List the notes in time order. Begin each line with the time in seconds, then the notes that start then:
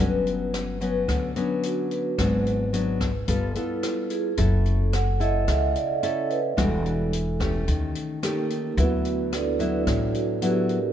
0.00 G1 G2 F#3 B3 C#4
0.27 closed hi-hat
0.54 cross-stick, closed hi-hat
0.81 F#3 B3 C#4, closed hi-hat
1.08 D2 D3, kick, cross-stick, closed hi-hat
1.36 F#3 B3 C#4 D4, closed hi-hat
1.63 F#4, closed hi-hat
1.91 B4, closed hi-hat
2.18 G#1 G#2 F#3 B3 D4, kick, cross-stick, closed hi-hat
2.47 closed hi-hat
2.73 F#3 B3 D4, closed hi-hat
3.01 kick, cross-stick, closed hi-hat
3.28 G1 G3 B3 F4 A4, kick, closed hi-hat
3.55 B3 E4 F4 A4, closed hi-hat
3.83 F4, cross-stick, closed hi-hat
4.10 G#4, closed hi-hat
4.37 F#1 F#3 C#4 E4 A4, kick, closed hi-hat
4.66 closed hi-hat
4.93 F#5, cross-stick, closed hi-hat
5.20 C#4 E4 A4 D#5, closed hi-hat
5.48 C#2 C#3 E5, kick, cross-stick, closed hi-hat
5.76 D5, closed hi-hat
6.03 C#4 E4 A4 C#5, closed hi-hat
6.30 B4, closed hi-hat
6.57 E1 E3 G3 D4 F#4 A4, kick, cross-stick, closed hi-hat
6.86 closed hi-hat
7.13 closed hi-hat
7.40 A3 C#4 G4, kick, cross-stick, closed hi-hat
7.67 D#2 D#3, kick, closed hi-hat
7.95 closed hi-hat
8.23 A3 A#3 C#4 D#4 G4 A#4, cross-stick, closed hi-hat
8.50 closed hi-hat
8.77 D2 D3 F#3 B3 E4 F#4 B4, kick, closed hi-hat
9.05 closed hi-hat
9.33 D4 A4 B4 D5, cross-stick, closed hi-hat
9.59 F#3 B3 E4, closed hi-hat
9.87 A1 A2, kick, cross-stick, closed hi-hat
10.14 F#4, closed hi-hat
10.42 F#3 B3 E4 G4, closed hi-hat
10.69 A#4, closed hi-hat